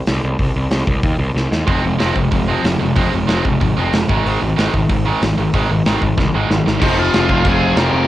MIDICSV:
0, 0, Header, 1, 7, 480
1, 0, Start_track
1, 0, Key_signature, -4, "minor"
1, 0, Tempo, 320684
1, 594, Time_signature, 4, 2, 24, 8
1, 12084, End_track
2, 0, Start_track
2, 0, Title_t, "Lead electric guitar"
2, 0, Program_c, 0, 29
2, 10207, Note_on_c, 0, 63, 72
2, 10223, Note_on_c, 0, 75, 88
2, 10427, Note_off_c, 0, 63, 0
2, 10445, Note_on_c, 0, 65, 81
2, 10465, Note_off_c, 0, 75, 0
2, 10465, Note_on_c, 0, 77, 101
2, 11109, Note_off_c, 0, 65, 0
2, 11169, Note_off_c, 0, 77, 0
2, 11179, Note_on_c, 0, 68, 83
2, 11205, Note_on_c, 0, 80, 103
2, 11612, Note_off_c, 0, 68, 0
2, 11633, Note_on_c, 0, 70, 82
2, 11657, Note_on_c, 0, 82, 107
2, 11671, Note_off_c, 0, 80, 0
2, 12076, Note_off_c, 0, 70, 0
2, 12084, Note_off_c, 0, 82, 0
2, 12084, End_track
3, 0, Start_track
3, 0, Title_t, "Distorted electric guitar"
3, 0, Program_c, 1, 30
3, 2501, Note_on_c, 1, 53, 79
3, 2512, Note_on_c, 1, 56, 91
3, 2516, Note_on_c, 1, 60, 100
3, 2712, Note_off_c, 1, 53, 0
3, 2721, Note_off_c, 1, 56, 0
3, 2730, Note_on_c, 1, 53, 65
3, 2739, Note_on_c, 1, 56, 72
3, 2744, Note_off_c, 1, 60, 0
3, 2955, Note_off_c, 1, 53, 0
3, 2959, Note_off_c, 1, 56, 0
3, 2972, Note_on_c, 1, 53, 85
3, 2977, Note_on_c, 1, 56, 86
3, 2987, Note_on_c, 1, 60, 98
3, 3199, Note_off_c, 1, 53, 0
3, 3212, Note_off_c, 1, 56, 0
3, 3217, Note_on_c, 1, 53, 65
3, 3221, Note_off_c, 1, 60, 0
3, 3229, Note_on_c, 1, 56, 74
3, 3443, Note_off_c, 1, 53, 0
3, 3446, Note_off_c, 1, 56, 0
3, 3461, Note_on_c, 1, 53, 71
3, 3464, Note_on_c, 1, 56, 84
3, 3688, Note_off_c, 1, 53, 0
3, 3689, Note_off_c, 1, 56, 0
3, 3710, Note_on_c, 1, 53, 89
3, 3716, Note_on_c, 1, 56, 99
3, 3720, Note_on_c, 1, 60, 101
3, 3928, Note_off_c, 1, 53, 0
3, 3937, Note_off_c, 1, 56, 0
3, 3946, Note_on_c, 1, 53, 70
3, 3947, Note_off_c, 1, 60, 0
3, 3955, Note_on_c, 1, 56, 80
3, 4166, Note_off_c, 1, 53, 0
3, 4171, Note_off_c, 1, 56, 0
3, 4184, Note_on_c, 1, 53, 66
3, 4189, Note_on_c, 1, 56, 73
3, 4407, Note_off_c, 1, 56, 0
3, 4410, Note_off_c, 1, 53, 0
3, 4425, Note_on_c, 1, 56, 97
3, 4427, Note_on_c, 1, 53, 93
3, 4443, Note_on_c, 1, 60, 93
3, 4660, Note_off_c, 1, 56, 0
3, 4662, Note_off_c, 1, 53, 0
3, 4669, Note_off_c, 1, 60, 0
3, 4682, Note_on_c, 1, 53, 63
3, 4691, Note_on_c, 1, 56, 76
3, 4881, Note_off_c, 1, 53, 0
3, 4896, Note_off_c, 1, 56, 0
3, 4899, Note_on_c, 1, 53, 87
3, 4914, Note_on_c, 1, 56, 89
3, 4925, Note_on_c, 1, 60, 91
3, 5133, Note_off_c, 1, 53, 0
3, 5137, Note_off_c, 1, 56, 0
3, 5151, Note_off_c, 1, 60, 0
3, 5151, Note_on_c, 1, 53, 74
3, 5155, Note_on_c, 1, 56, 77
3, 5374, Note_off_c, 1, 53, 0
3, 5377, Note_off_c, 1, 56, 0
3, 5395, Note_on_c, 1, 53, 78
3, 5395, Note_on_c, 1, 56, 76
3, 5617, Note_off_c, 1, 53, 0
3, 5617, Note_off_c, 1, 56, 0
3, 5642, Note_on_c, 1, 53, 96
3, 5654, Note_on_c, 1, 56, 86
3, 5662, Note_on_c, 1, 60, 107
3, 5870, Note_off_c, 1, 53, 0
3, 5876, Note_off_c, 1, 56, 0
3, 5880, Note_off_c, 1, 60, 0
3, 5885, Note_on_c, 1, 53, 75
3, 5894, Note_on_c, 1, 56, 82
3, 6102, Note_off_c, 1, 53, 0
3, 6107, Note_off_c, 1, 56, 0
3, 6123, Note_on_c, 1, 44, 87
3, 6133, Note_on_c, 1, 51, 97
3, 6142, Note_on_c, 1, 56, 97
3, 6327, Note_off_c, 1, 44, 0
3, 6337, Note_off_c, 1, 51, 0
3, 6342, Note_off_c, 1, 56, 0
3, 6345, Note_on_c, 1, 44, 88
3, 6355, Note_on_c, 1, 51, 99
3, 6360, Note_on_c, 1, 56, 101
3, 6582, Note_off_c, 1, 44, 0
3, 6587, Note_off_c, 1, 51, 0
3, 6590, Note_off_c, 1, 56, 0
3, 6602, Note_on_c, 1, 44, 65
3, 6610, Note_on_c, 1, 51, 77
3, 6815, Note_off_c, 1, 44, 0
3, 6825, Note_off_c, 1, 51, 0
3, 6833, Note_on_c, 1, 44, 82
3, 6846, Note_on_c, 1, 51, 101
3, 6849, Note_on_c, 1, 56, 90
3, 7066, Note_off_c, 1, 44, 0
3, 7073, Note_off_c, 1, 51, 0
3, 7074, Note_off_c, 1, 56, 0
3, 7092, Note_on_c, 1, 44, 68
3, 7098, Note_on_c, 1, 51, 78
3, 7306, Note_off_c, 1, 44, 0
3, 7309, Note_off_c, 1, 51, 0
3, 7330, Note_on_c, 1, 44, 68
3, 7332, Note_on_c, 1, 51, 86
3, 7545, Note_off_c, 1, 44, 0
3, 7546, Note_off_c, 1, 51, 0
3, 7569, Note_on_c, 1, 44, 84
3, 7576, Note_on_c, 1, 51, 91
3, 7582, Note_on_c, 1, 56, 92
3, 7794, Note_off_c, 1, 44, 0
3, 7797, Note_off_c, 1, 51, 0
3, 7801, Note_off_c, 1, 56, 0
3, 7821, Note_on_c, 1, 51, 79
3, 7823, Note_on_c, 1, 44, 72
3, 8031, Note_off_c, 1, 51, 0
3, 8032, Note_off_c, 1, 44, 0
3, 8049, Note_on_c, 1, 44, 71
3, 8053, Note_on_c, 1, 51, 80
3, 8265, Note_off_c, 1, 44, 0
3, 8267, Note_off_c, 1, 51, 0
3, 8291, Note_on_c, 1, 51, 90
3, 8292, Note_on_c, 1, 44, 94
3, 8307, Note_on_c, 1, 56, 94
3, 8515, Note_off_c, 1, 44, 0
3, 8515, Note_off_c, 1, 51, 0
3, 8523, Note_off_c, 1, 56, 0
3, 8545, Note_on_c, 1, 51, 77
3, 8547, Note_on_c, 1, 44, 61
3, 8752, Note_off_c, 1, 51, 0
3, 8753, Note_off_c, 1, 44, 0
3, 8778, Note_on_c, 1, 44, 86
3, 8784, Note_on_c, 1, 51, 95
3, 8792, Note_on_c, 1, 56, 100
3, 8992, Note_off_c, 1, 44, 0
3, 9001, Note_off_c, 1, 51, 0
3, 9005, Note_off_c, 1, 56, 0
3, 9010, Note_on_c, 1, 44, 70
3, 9017, Note_on_c, 1, 51, 71
3, 9224, Note_off_c, 1, 44, 0
3, 9227, Note_off_c, 1, 51, 0
3, 9243, Note_on_c, 1, 44, 72
3, 9255, Note_on_c, 1, 51, 87
3, 9460, Note_off_c, 1, 44, 0
3, 9466, Note_off_c, 1, 51, 0
3, 9497, Note_on_c, 1, 44, 86
3, 9503, Note_on_c, 1, 51, 90
3, 9508, Note_on_c, 1, 56, 97
3, 9712, Note_off_c, 1, 51, 0
3, 9716, Note_off_c, 1, 44, 0
3, 9722, Note_off_c, 1, 56, 0
3, 9730, Note_on_c, 1, 51, 83
3, 9731, Note_on_c, 1, 44, 69
3, 9943, Note_off_c, 1, 44, 0
3, 9943, Note_off_c, 1, 51, 0
3, 9967, Note_on_c, 1, 44, 67
3, 9972, Note_on_c, 1, 51, 78
3, 10180, Note_off_c, 1, 44, 0
3, 10183, Note_off_c, 1, 51, 0
3, 10204, Note_on_c, 1, 53, 88
3, 10219, Note_on_c, 1, 60, 97
3, 10237, Note_on_c, 1, 65, 108
3, 10252, Note_on_c, 1, 68, 114
3, 10906, Note_off_c, 1, 68, 0
3, 10912, Note_on_c, 1, 68, 88
3, 10926, Note_off_c, 1, 65, 0
3, 10932, Note_on_c, 1, 65, 90
3, 10938, Note_off_c, 1, 60, 0
3, 10944, Note_on_c, 1, 60, 76
3, 10949, Note_off_c, 1, 53, 0
3, 10955, Note_on_c, 1, 53, 77
3, 11592, Note_off_c, 1, 53, 0
3, 11610, Note_on_c, 1, 53, 83
3, 11614, Note_off_c, 1, 60, 0
3, 11616, Note_off_c, 1, 68, 0
3, 11626, Note_off_c, 1, 65, 0
3, 11631, Note_on_c, 1, 60, 92
3, 11642, Note_on_c, 1, 65, 85
3, 11654, Note_on_c, 1, 68, 95
3, 12075, Note_off_c, 1, 53, 0
3, 12084, Note_off_c, 1, 60, 0
3, 12084, Note_off_c, 1, 65, 0
3, 12084, Note_off_c, 1, 68, 0
3, 12084, End_track
4, 0, Start_track
4, 0, Title_t, "Distorted electric guitar"
4, 0, Program_c, 2, 30
4, 2519, Note_on_c, 2, 41, 92
4, 2529, Note_on_c, 2, 48, 87
4, 2745, Note_off_c, 2, 41, 0
4, 2751, Note_off_c, 2, 48, 0
4, 2768, Note_on_c, 2, 41, 72
4, 2774, Note_on_c, 2, 48, 75
4, 2981, Note_off_c, 2, 41, 0
4, 2984, Note_off_c, 2, 48, 0
4, 2997, Note_on_c, 2, 41, 95
4, 3005, Note_on_c, 2, 48, 89
4, 3225, Note_off_c, 2, 41, 0
4, 3229, Note_off_c, 2, 48, 0
4, 3245, Note_on_c, 2, 41, 64
4, 3252, Note_on_c, 2, 48, 70
4, 3460, Note_off_c, 2, 41, 0
4, 3463, Note_off_c, 2, 48, 0
4, 3495, Note_on_c, 2, 41, 73
4, 3497, Note_on_c, 2, 48, 82
4, 3702, Note_off_c, 2, 41, 0
4, 3706, Note_off_c, 2, 48, 0
4, 3720, Note_on_c, 2, 41, 87
4, 3730, Note_on_c, 2, 48, 89
4, 3942, Note_off_c, 2, 41, 0
4, 3948, Note_off_c, 2, 48, 0
4, 3960, Note_on_c, 2, 41, 76
4, 3966, Note_on_c, 2, 48, 88
4, 4178, Note_off_c, 2, 41, 0
4, 4181, Note_off_c, 2, 48, 0
4, 4200, Note_on_c, 2, 41, 66
4, 4213, Note_on_c, 2, 48, 72
4, 4418, Note_off_c, 2, 41, 0
4, 4425, Note_off_c, 2, 48, 0
4, 4435, Note_on_c, 2, 41, 86
4, 4446, Note_on_c, 2, 48, 97
4, 4661, Note_off_c, 2, 41, 0
4, 4671, Note_off_c, 2, 48, 0
4, 4679, Note_on_c, 2, 41, 71
4, 4692, Note_on_c, 2, 48, 83
4, 4898, Note_off_c, 2, 41, 0
4, 4905, Note_off_c, 2, 48, 0
4, 4925, Note_on_c, 2, 41, 93
4, 4935, Note_on_c, 2, 48, 93
4, 5151, Note_off_c, 2, 41, 0
4, 5156, Note_off_c, 2, 48, 0
4, 5174, Note_on_c, 2, 41, 62
4, 5174, Note_on_c, 2, 48, 77
4, 5386, Note_off_c, 2, 41, 0
4, 5386, Note_off_c, 2, 48, 0
4, 5408, Note_on_c, 2, 41, 77
4, 5412, Note_on_c, 2, 48, 84
4, 5623, Note_off_c, 2, 41, 0
4, 5625, Note_off_c, 2, 48, 0
4, 5644, Note_on_c, 2, 41, 90
4, 5655, Note_on_c, 2, 48, 96
4, 5871, Note_off_c, 2, 41, 0
4, 5876, Note_off_c, 2, 48, 0
4, 5886, Note_on_c, 2, 41, 79
4, 5898, Note_on_c, 2, 48, 90
4, 6103, Note_off_c, 2, 41, 0
4, 6108, Note_off_c, 2, 48, 0
4, 10191, Note_on_c, 2, 41, 86
4, 10223, Note_on_c, 2, 48, 108
4, 10914, Note_off_c, 2, 48, 0
4, 10932, Note_on_c, 2, 48, 82
4, 10954, Note_off_c, 2, 41, 0
4, 10960, Note_on_c, 2, 41, 78
4, 11605, Note_off_c, 2, 41, 0
4, 11623, Note_on_c, 2, 41, 78
4, 11626, Note_off_c, 2, 48, 0
4, 11655, Note_on_c, 2, 48, 82
4, 11681, Note_on_c, 2, 53, 86
4, 12076, Note_off_c, 2, 41, 0
4, 12084, Note_off_c, 2, 48, 0
4, 12084, Note_off_c, 2, 53, 0
4, 12084, End_track
5, 0, Start_track
5, 0, Title_t, "Distorted electric guitar"
5, 0, Program_c, 3, 30
5, 10178, Note_on_c, 3, 41, 84
5, 10207, Note_on_c, 3, 48, 101
5, 10229, Note_on_c, 3, 53, 104
5, 11112, Note_off_c, 3, 41, 0
5, 11130, Note_on_c, 3, 41, 88
5, 11145, Note_off_c, 3, 48, 0
5, 11156, Note_off_c, 3, 53, 0
5, 11162, Note_on_c, 3, 48, 91
5, 11181, Note_on_c, 3, 53, 92
5, 12066, Note_off_c, 3, 41, 0
5, 12084, Note_off_c, 3, 48, 0
5, 12084, Note_off_c, 3, 53, 0
5, 12084, End_track
6, 0, Start_track
6, 0, Title_t, "Picked electric bass"
6, 0, Program_c, 4, 34
6, 123, Note_on_c, 4, 36, 86
6, 278, Note_off_c, 4, 36, 0
6, 355, Note_on_c, 4, 36, 83
6, 513, Note_off_c, 4, 36, 0
6, 589, Note_on_c, 4, 36, 89
6, 749, Note_off_c, 4, 36, 0
6, 836, Note_on_c, 4, 36, 81
6, 994, Note_off_c, 4, 36, 0
6, 1056, Note_on_c, 4, 36, 88
6, 1221, Note_off_c, 4, 36, 0
6, 1303, Note_on_c, 4, 36, 82
6, 1466, Note_off_c, 4, 36, 0
6, 1545, Note_on_c, 4, 39, 87
6, 1708, Note_off_c, 4, 39, 0
6, 1770, Note_on_c, 4, 36, 83
6, 1938, Note_off_c, 4, 36, 0
6, 2012, Note_on_c, 4, 36, 86
6, 2179, Note_off_c, 4, 36, 0
6, 2261, Note_on_c, 4, 39, 81
6, 2426, Note_off_c, 4, 39, 0
6, 2504, Note_on_c, 4, 29, 89
6, 2668, Note_off_c, 4, 29, 0
6, 2742, Note_on_c, 4, 29, 81
6, 2907, Note_off_c, 4, 29, 0
6, 2996, Note_on_c, 4, 29, 85
6, 3156, Note_off_c, 4, 29, 0
6, 3233, Note_on_c, 4, 29, 83
6, 3394, Note_off_c, 4, 29, 0
6, 3471, Note_on_c, 4, 29, 80
6, 3792, Note_off_c, 4, 29, 0
6, 3951, Note_on_c, 4, 29, 84
6, 4113, Note_off_c, 4, 29, 0
6, 4203, Note_on_c, 4, 29, 81
6, 4361, Note_off_c, 4, 29, 0
6, 4432, Note_on_c, 4, 29, 88
6, 4594, Note_off_c, 4, 29, 0
6, 4690, Note_on_c, 4, 29, 79
6, 4847, Note_off_c, 4, 29, 0
6, 4925, Note_on_c, 4, 29, 85
6, 5083, Note_off_c, 4, 29, 0
6, 5166, Note_on_c, 4, 29, 81
6, 5324, Note_off_c, 4, 29, 0
6, 5411, Note_on_c, 4, 32, 88
6, 5567, Note_off_c, 4, 32, 0
6, 5656, Note_on_c, 4, 29, 85
6, 5811, Note_off_c, 4, 29, 0
6, 5883, Note_on_c, 4, 29, 89
6, 6043, Note_off_c, 4, 29, 0
6, 6130, Note_on_c, 4, 32, 82
6, 6287, Note_off_c, 4, 32, 0
6, 6373, Note_on_c, 4, 32, 88
6, 6529, Note_off_c, 4, 32, 0
6, 6611, Note_on_c, 4, 32, 84
6, 6768, Note_off_c, 4, 32, 0
6, 6846, Note_on_c, 4, 32, 83
6, 7005, Note_off_c, 4, 32, 0
6, 7099, Note_on_c, 4, 32, 87
6, 7254, Note_off_c, 4, 32, 0
6, 7337, Note_on_c, 4, 32, 83
6, 7650, Note_off_c, 4, 32, 0
6, 7821, Note_on_c, 4, 32, 88
6, 7975, Note_off_c, 4, 32, 0
6, 8051, Note_on_c, 4, 32, 84
6, 8208, Note_off_c, 4, 32, 0
6, 8292, Note_on_c, 4, 32, 90
6, 8448, Note_off_c, 4, 32, 0
6, 8526, Note_on_c, 4, 32, 82
6, 8684, Note_off_c, 4, 32, 0
6, 8761, Note_on_c, 4, 32, 86
6, 8921, Note_off_c, 4, 32, 0
6, 9013, Note_on_c, 4, 32, 82
6, 9169, Note_off_c, 4, 32, 0
6, 9247, Note_on_c, 4, 36, 83
6, 9404, Note_off_c, 4, 36, 0
6, 9484, Note_on_c, 4, 32, 85
6, 9642, Note_off_c, 4, 32, 0
6, 9717, Note_on_c, 4, 32, 84
6, 9877, Note_off_c, 4, 32, 0
6, 9962, Note_on_c, 4, 32, 82
6, 10120, Note_off_c, 4, 32, 0
6, 10206, Note_on_c, 4, 29, 96
6, 10598, Note_off_c, 4, 29, 0
6, 10686, Note_on_c, 4, 29, 89
6, 10880, Note_off_c, 4, 29, 0
6, 10919, Note_on_c, 4, 29, 90
6, 11115, Note_off_c, 4, 29, 0
6, 11157, Note_on_c, 4, 29, 96
6, 11549, Note_off_c, 4, 29, 0
6, 11619, Note_on_c, 4, 29, 92
6, 11821, Note_off_c, 4, 29, 0
6, 11867, Note_on_c, 4, 29, 94
6, 12065, Note_off_c, 4, 29, 0
6, 12084, End_track
7, 0, Start_track
7, 0, Title_t, "Drums"
7, 98, Note_on_c, 9, 46, 53
7, 110, Note_on_c, 9, 38, 102
7, 247, Note_off_c, 9, 46, 0
7, 259, Note_off_c, 9, 38, 0
7, 582, Note_on_c, 9, 46, 50
7, 585, Note_on_c, 9, 36, 107
7, 732, Note_off_c, 9, 46, 0
7, 734, Note_off_c, 9, 36, 0
7, 1057, Note_on_c, 9, 46, 50
7, 1069, Note_on_c, 9, 38, 105
7, 1206, Note_off_c, 9, 46, 0
7, 1218, Note_off_c, 9, 38, 0
7, 1304, Note_on_c, 9, 36, 86
7, 1454, Note_off_c, 9, 36, 0
7, 1544, Note_on_c, 9, 46, 49
7, 1545, Note_on_c, 9, 36, 108
7, 1694, Note_off_c, 9, 46, 0
7, 1695, Note_off_c, 9, 36, 0
7, 2048, Note_on_c, 9, 38, 54
7, 2198, Note_off_c, 9, 38, 0
7, 2279, Note_on_c, 9, 38, 83
7, 2428, Note_off_c, 9, 38, 0
7, 2509, Note_on_c, 9, 36, 102
7, 2512, Note_on_c, 9, 46, 54
7, 2659, Note_off_c, 9, 36, 0
7, 2662, Note_off_c, 9, 46, 0
7, 2986, Note_on_c, 9, 46, 54
7, 2997, Note_on_c, 9, 38, 99
7, 3135, Note_off_c, 9, 46, 0
7, 3147, Note_off_c, 9, 38, 0
7, 3228, Note_on_c, 9, 36, 84
7, 3378, Note_off_c, 9, 36, 0
7, 3463, Note_on_c, 9, 46, 56
7, 3468, Note_on_c, 9, 36, 111
7, 3613, Note_off_c, 9, 46, 0
7, 3618, Note_off_c, 9, 36, 0
7, 3954, Note_on_c, 9, 46, 56
7, 3966, Note_on_c, 9, 38, 104
7, 4104, Note_off_c, 9, 46, 0
7, 4116, Note_off_c, 9, 38, 0
7, 4427, Note_on_c, 9, 46, 56
7, 4437, Note_on_c, 9, 36, 106
7, 4577, Note_off_c, 9, 46, 0
7, 4586, Note_off_c, 9, 36, 0
7, 4912, Note_on_c, 9, 46, 48
7, 4924, Note_on_c, 9, 38, 106
7, 5062, Note_off_c, 9, 46, 0
7, 5074, Note_off_c, 9, 38, 0
7, 5164, Note_on_c, 9, 36, 90
7, 5314, Note_off_c, 9, 36, 0
7, 5408, Note_on_c, 9, 46, 51
7, 5409, Note_on_c, 9, 36, 100
7, 5557, Note_off_c, 9, 46, 0
7, 5558, Note_off_c, 9, 36, 0
7, 5883, Note_on_c, 9, 46, 51
7, 5895, Note_on_c, 9, 38, 108
7, 6033, Note_off_c, 9, 46, 0
7, 6045, Note_off_c, 9, 38, 0
7, 6129, Note_on_c, 9, 36, 104
7, 6279, Note_off_c, 9, 36, 0
7, 6379, Note_on_c, 9, 46, 53
7, 6529, Note_off_c, 9, 46, 0
7, 6860, Note_on_c, 9, 46, 51
7, 6872, Note_on_c, 9, 38, 99
7, 7009, Note_off_c, 9, 46, 0
7, 7021, Note_off_c, 9, 38, 0
7, 7095, Note_on_c, 9, 36, 85
7, 7244, Note_off_c, 9, 36, 0
7, 7325, Note_on_c, 9, 46, 52
7, 7330, Note_on_c, 9, 36, 108
7, 7474, Note_off_c, 9, 46, 0
7, 7480, Note_off_c, 9, 36, 0
7, 7817, Note_on_c, 9, 46, 55
7, 7829, Note_on_c, 9, 38, 110
7, 7966, Note_off_c, 9, 46, 0
7, 7978, Note_off_c, 9, 38, 0
7, 8293, Note_on_c, 9, 36, 103
7, 8297, Note_on_c, 9, 46, 57
7, 8442, Note_off_c, 9, 36, 0
7, 8447, Note_off_c, 9, 46, 0
7, 8766, Note_on_c, 9, 46, 55
7, 8778, Note_on_c, 9, 38, 105
7, 8916, Note_off_c, 9, 46, 0
7, 8928, Note_off_c, 9, 38, 0
7, 9009, Note_on_c, 9, 36, 81
7, 9158, Note_off_c, 9, 36, 0
7, 9247, Note_on_c, 9, 36, 103
7, 9270, Note_on_c, 9, 38, 59
7, 9397, Note_off_c, 9, 36, 0
7, 9419, Note_off_c, 9, 38, 0
7, 9738, Note_on_c, 9, 38, 80
7, 9888, Note_off_c, 9, 38, 0
7, 9990, Note_on_c, 9, 38, 79
7, 10140, Note_off_c, 9, 38, 0
7, 10202, Note_on_c, 9, 36, 120
7, 10205, Note_on_c, 9, 49, 122
7, 10205, Note_on_c, 9, 57, 67
7, 10352, Note_off_c, 9, 36, 0
7, 10355, Note_off_c, 9, 49, 0
7, 10355, Note_off_c, 9, 57, 0
7, 10679, Note_on_c, 9, 57, 67
7, 10691, Note_on_c, 9, 38, 111
7, 10829, Note_off_c, 9, 57, 0
7, 10841, Note_off_c, 9, 38, 0
7, 10914, Note_on_c, 9, 36, 91
7, 11064, Note_off_c, 9, 36, 0
7, 11146, Note_on_c, 9, 57, 70
7, 11148, Note_on_c, 9, 36, 117
7, 11296, Note_off_c, 9, 57, 0
7, 11298, Note_off_c, 9, 36, 0
7, 11620, Note_on_c, 9, 57, 69
7, 11632, Note_on_c, 9, 38, 120
7, 11769, Note_off_c, 9, 57, 0
7, 11781, Note_off_c, 9, 38, 0
7, 12084, End_track
0, 0, End_of_file